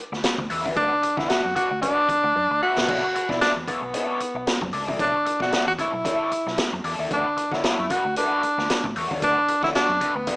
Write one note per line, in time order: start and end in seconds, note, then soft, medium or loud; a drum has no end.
0.12 0.22 D2 medium
0.12 muted overdriven electric guitar stroke soft
0.12 snare soft
0.24 muted overdriven electric guitar stroke soft
0.24 snare loud
0.24 closed hi-hat loud
0.38 0.48 D2 medium
0.38 muted overdriven electric guitar stroke soft
0.38 kick medium
0.50 0.66 E2 medium
0.50 0.62 D4 medium
0.50 0.62 F#4 medium
0.50 0.62 B4 medium
0.50 0.62 E5 medium
0.50 open hi-hat medium
0.65 0.75 D#2 medium
0.65 0.74 D4 soft
0.65 0.74 F#4 soft
0.65 0.74 B4 medium
0.65 0.74 E5 medium
0.65 kick medium
0.76 0.89 D2 loud
0.76 0.91 D4 medium
0.76 1.19 D4 loud
0.76 0.91 F#4 medium
0.76 0.91 B4 loud
0.76 0.92 D5 medium
0.76 kick loud
0.76 closed hi-hat medium
1.03 muted overdriven electric guitar stroke soft
1.03 muted fingered electric bass stroke soft
1.03 closed hi-hat medium
1.17 1.27 D3 loud
1.17 1.27 D4 soft
1.17 1.30 E4 medium
1.17 1.27 F#4 medium
1.17 1.27 B4 medium
1.17 1.26 E5 medium
1.17 kick medium
1.17 snare soft
1.28 1.44 D4 medium
1.28 1.44 F#4 medium
1.28 1.55 F#4 loud
1.28 1.43 B4 medium
1.28 1.43 E5 medium
1.28 snare loud
1.28 closed hi-hat medium
1.44 1.54 F#2 medium
1.44 muted overdriven electric guitar stroke soft
1.56 1.67 D4 medium
1.56 1.81 F#4 loud
1.56 1.67 F#4 medium
1.56 1.68 B4 medium
1.56 1.68 D5 medium
1.56 kick medium
1.56 closed hi-hat medium
1.71 1.80 D2 medium
1.71 muted overdriven electric guitar stroke soft
1.82 2.07 D4 medium
1.82 2.58 D4 loud
1.82 2.07 F#4 medium
1.82 2.07 B4 medium
1.82 2.07 D5 medium
1.82 kick medium
1.82 closed hi-hat medium
2.09 muted overdriven electric guitar stroke soft
2.09 muted fingered electric bass stroke soft
2.09 kick medium
2.09 closed hi-hat medium
2.23 2.33 D2 loud
2.23 muted overdriven electric guitar stroke soft
2.36 2.48 F#2 medium
2.36 muted overdriven electric guitar stroke soft
2.51 2.60 D2 medium
2.51 muted overdriven electric guitar stroke soft
2.62 2.73 D4 medium
2.62 2.73 F#4 medium
2.62 3.32 F#4 medium
2.62 2.73 B4 medium
2.62 2.74 E5 medium
2.77 2.86 B1 loud
2.77 2.86 D4 medium
2.77 2.86 F#4 medium
2.77 2.86 B4 medium
2.77 2.86 E5 medium
2.77 snare medium
2.88 3.00 B1 loud
2.88 3.03 D4 medium
2.88 3.03 E4 medium
2.88 3.03 A4 medium
2.88 3.04 C#5 medium
2.88 kick loud
2.88 crash medium
3.15 muted overdriven electric guitar stroke soft
3.15 muted fingered electric bass stroke soft
3.15 closed hi-hat medium
3.29 3.39 B2 medium
3.29 3.39 D4 medium
3.29 3.40 E4 medium
3.29 3.39 E4 medium
3.29 3.39 A4 medium
3.29 3.38 D5 medium
3.29 kick loud
3.29 snare soft
3.41 3.53 D4 loud
3.41 3.56 D4 medium
3.41 3.56 E4 medium
3.41 3.56 A4 medium
3.41 3.56 D5 medium
3.41 snare loud
3.41 closed hi-hat medium
3.56 3.65 E2 medium
3.56 muted overdriven electric guitar stroke soft
3.68 4.69 B3 medium
3.68 3.79 D4 medium
3.68 3.79 E4 medium
3.68 3.80 A4 medium
3.68 3.80 C#5 medium
3.68 kick medium
3.68 closed hi-hat medium
3.82 3.92 B1 medium
3.82 muted overdriven electric guitar stroke soft
3.94 4.18 D4 medium
3.94 4.19 E4 medium
3.94 4.19 A4 loud
3.94 4.19 C#5 loud
3.94 closed hi-hat medium
4.20 muted fingered electric bass stroke soft
4.20 muted overdriven electric guitar stroke soft
4.20 closed hi-hat medium
4.34 4.44 B1 medium
4.34 muted overdriven electric guitar stroke soft
4.47 muted overdriven electric guitar stroke soft
4.47 snare loud
4.47 closed hi-hat medium
4.61 4.71 F#2 medium
4.61 muted overdriven electric guitar stroke soft
4.61 kick medium
4.73 4.88 C#2 medium
4.73 4.84 D4 medium
4.73 4.85 E4 medium
4.73 4.85 A4 medium
4.73 4.85 D5 medium
4.73 open hi-hat medium
4.88 4.98 C2 loud
4.88 4.97 D4 soft
4.88 4.97 E4 medium
4.88 4.97 A4 medium
4.88 4.97 D5 medium
4.88 kick medium
4.99 5.11 B1 loud
4.99 5.14 D4 medium
4.99 5.38 D4 medium
4.99 5.14 E4 medium
4.99 5.14 A4 medium
4.99 5.14 C#5 loud
4.99 kick loud
4.99 closed hi-hat medium
5.25 muted overdriven electric guitar stroke soft
5.25 muted fingered electric bass stroke soft
5.25 closed hi-hat medium
5.40 5.50 B2 loud
5.40 5.50 D4 medium
5.40 5.50 E4 medium
5.40 5.66 F#4 loud
5.40 5.50 A4 medium
5.40 5.49 D5 medium
5.40 kick medium
5.40 snare soft
5.52 5.67 D4 medium
5.52 5.67 E4 medium
5.52 5.67 A4 medium
5.52 5.67 D5 medium
5.52 snare loud
5.52 closed hi-hat medium
5.67 5.76 E2 medium
5.67 5.73 F#4 loud
5.67 muted overdriven electric guitar stroke soft
5.79 5.90 D4 medium
5.79 5.90 E4 medium
5.79 6.81 E4 loud
5.79 5.90 A4 medium
5.79 5.91 C#5 medium
5.79 kick medium
5.79 closed hi-hat medium
5.93 6.03 B1 medium
5.93 muted overdriven electric guitar stroke soft
6.05 6.30 D4 medium
6.05 6.30 E4 medium
6.05 6.30 A4 medium
6.05 6.30 C#5 loud
6.05 kick loud
6.05 closed hi-hat loud
6.31 muted overdriven electric guitar stroke soft
6.31 muted fingered electric bass stroke soft
6.31 closed hi-hat medium
6.46 6.56 B1 medium
6.46 muted overdriven electric guitar stroke medium
6.46 snare soft
6.58 muted overdriven electric guitar stroke soft
6.58 snare loud
6.58 closed hi-hat loud
6.73 6.82 F#2 medium
6.73 muted overdriven electric guitar stroke medium
6.84 6.96 E2 medium
6.84 6.96 D4 medium
6.84 6.96 E4 medium
6.84 6.96 A4 medium
6.84 6.96 D5 medium
6.84 open hi-hat medium
6.99 7.08 D#2 loud
6.99 7.09 D4 medium
6.99 7.08 E4 medium
6.99 7.08 A4 medium
6.99 7.08 D5 medium
7.11 7.23 D2 loud
7.11 7.25 A3 medium
7.11 7.26 D4 medium
7.11 7.55 D4 medium
7.11 7.26 F#4 medium
7.11 7.26 B4 loud
7.11 kick loud
7.11 closed hi-hat medium
7.37 muted overdriven electric guitar stroke soft
7.37 muted fingered electric bass stroke soft
7.37 closed hi-hat medium
7.51 7.61 D3 loud
7.51 7.62 A3 medium
7.51 7.61 D4 medium
7.51 7.93 E4 medium
7.51 7.61 F#4 medium
7.51 7.61 C#5 medium
7.51 kick medium
7.51 snare soft
7.64 7.84 A3 medium
7.64 7.79 D4 medium
7.64 7.78 F#4 medium
7.64 7.79 C#5 loud
7.64 snare loud
7.64 closed hi-hat medium
7.79 7.88 F#2 medium
7.79 muted overdriven electric guitar stroke soft
7.90 8.02 A3 medium
7.90 8.02 D4 medium
7.90 8.17 F#4 loud
7.90 8.02 F#4 medium
7.90 8.02 B4 medium
7.90 kick medium
7.90 closed hi-hat medium
8.05 8.14 D2 medium
8.05 muted overdriven electric guitar stroke medium
8.16 8.41 A3 medium
8.16 8.92 D4 medium
8.16 8.42 D4 medium
8.16 8.42 F#4 medium
8.16 8.42 B4 medium
8.16 closed hi-hat medium
8.43 muted fingered electric bass stroke soft
8.43 muted overdriven electric guitar stroke soft
8.43 closed hi-hat medium
8.58 8.67 D2 loud
8.58 muted overdriven electric guitar stroke soft
8.58 snare soft
8.70 muted overdriven electric guitar stroke soft
8.70 snare loud
8.70 closed hi-hat loud
8.84 8.93 A2 medium
8.84 muted overdriven electric guitar stroke medium
8.84 kick medium
8.95 9.07 E2 loud
8.95 9.07 A3 medium
8.95 9.08 D4 medium
8.95 9.08 F#4 medium
8.95 9.08 C#5 medium
8.95 open hi-hat medium
9.11 9.20 D#2 medium
9.11 9.20 A3 medium
9.11 9.20 D4 medium
9.11 9.20 F#4 medium
9.11 9.20 C#5 medium
9.11 kick medium
9.22 9.34 D2 medium
9.22 9.37 A3 medium
9.22 9.37 D4 medium
9.22 9.61 D4 medium
9.22 9.37 F#4 medium
9.22 9.37 B4 loud
9.22 kick loud
9.22 closed hi-hat medium
9.48 muted fingered electric bass stroke soft
9.48 muted overdriven electric guitar stroke soft
9.48 closed hi-hat medium
9.62 9.72 D3 loud
9.62 9.73 A3 medium
9.62 9.72 D4 medium
9.62 9.69 E4 medium
9.62 9.72 F#4 medium
9.62 9.72 C#5 medium
9.62 kick medium
9.62 snare soft
9.75 9.90 A3 medium
9.75 10.17 D4 medium
9.75 9.89 D4 medium
9.75 9.89 F#4 loud
9.75 9.89 C#5 loud
9.75 snare loud
9.75 closed hi-hat medium
9.89 9.98 F#2 medium
9.89 muted overdriven electric guitar stroke soft
10.01 10.12 A3 medium
10.01 10.13 D4 medium
10.01 10.13 F#4 medium
10.01 10.13 B4 medium
10.01 kick medium
10.01 closed hi-hat medium
10.15 10.25 D2 medium
10.15 10.36 B3 medium
10.15 muted overdriven electric guitar stroke medium
10.27 10.36 A3 medium
10.27 10.36 D4 medium
10.27 10.36 F#4 medium
10.27 10.36 B4 medium
10.27 kick medium
10.27 closed hi-hat medium